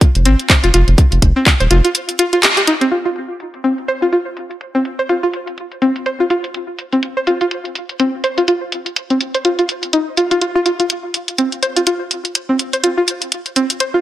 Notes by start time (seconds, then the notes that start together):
0.01 kick, closed hi-hat
0.15 F1, closed hi-hat
0.25 G#1 C4, closed hi-hat
0.39 closed hi-hat
0.50 C5, kick, clap, closed hi-hat
0.64 F1 F4, closed hi-hat
0.74 F1 F4, closed hi-hat
0.88 F1, closed hi-hat
0.98 kick, closed hi-hat
1.12 F1, closed hi-hat
1.22 F1, kick, closed hi-hat
1.36 C4
1.46 kick, clap, closed hi-hat
1.60 D#1 C5, closed hi-hat
1.71 F1 F4, closed hi-hat
1.84 F4, closed hi-hat
1.95 closed hi-hat
2.09 closed hi-hat
2.19 F4, closed hi-hat
2.33 F4, closed hi-hat
2.43 G4, clap, closed hi-hat
2.57 G4, closed hi-hat
2.67 D#4, closed hi-hat
2.81 C4, closed hi-hat
2.91 F4, closed hi-hat
3.05 F4, closed hi-hat
3.16 closed hi-hat
3.40 closed hi-hat
3.54 closed hi-hat
3.64 C4, closed hi-hat
3.78 closed hi-hat
3.88 C5, closed hi-hat
4.02 F4, closed hi-hat
4.13 F4, closed hi-hat
4.37 closed hi-hat
4.51 closed hi-hat
4.61 closed hi-hat
4.75 C4
4.85 closed hi-hat
4.99 C5, closed hi-hat
5.09 F4, closed hi-hat
5.23 F4
5.33 closed hi-hat
5.47 closed hi-hat
5.58 closed hi-hat
5.72 closed hi-hat
5.82 C4, closed hi-hat
5.96 closed hi-hat
6.06 C5, closed hi-hat
6.20 F4
6.30 F4, closed hi-hat
6.44 closed hi-hat
6.54 closed hi-hat
6.79 closed hi-hat
6.92 C4, closed hi-hat
7.03 closed hi-hat
7.17 C5
7.27 F4, closed hi-hat
7.41 F4, closed hi-hat
7.51 closed hi-hat
7.65 closed hi-hat
7.75 closed hi-hat
7.89 closed hi-hat
8.00 C4, closed hi-hat
8.24 C5, closed hi-hat
8.38 F4, closed hi-hat
8.48 F4, closed hi-hat
8.72 closed hi-hat
8.86 closed hi-hat
8.96 closed hi-hat
9.10 C4, closed hi-hat
9.21 closed hi-hat
9.34 C5, closed hi-hat
9.45 F4, closed hi-hat
9.59 F4, closed hi-hat
9.69 closed hi-hat
9.83 closed hi-hat
9.93 D#4, closed hi-hat
10.17 F4, closed hi-hat
10.31 F4, closed hi-hat
10.41 F4, closed hi-hat
10.55 F4
10.66 F4, closed hi-hat
10.80 F4, closed hi-hat
10.90 closed hi-hat
11.14 closed hi-hat
11.28 closed hi-hat
11.38 C4, closed hi-hat
11.52 closed hi-hat
11.63 C5, closed hi-hat
11.76 F4, closed hi-hat
11.87 F4, closed hi-hat
12.11 closed hi-hat
12.25 closed hi-hat
12.35 closed hi-hat
12.49 C4
12.59 closed hi-hat
12.73 C5, closed hi-hat
12.84 F4, closed hi-hat
12.97 F4
13.08 closed hi-hat
13.22 closed hi-hat
13.32 closed hi-hat
13.46 closed hi-hat
13.56 C4, closed hi-hat
13.70 closed hi-hat
13.80 C5, closed hi-hat
13.94 F4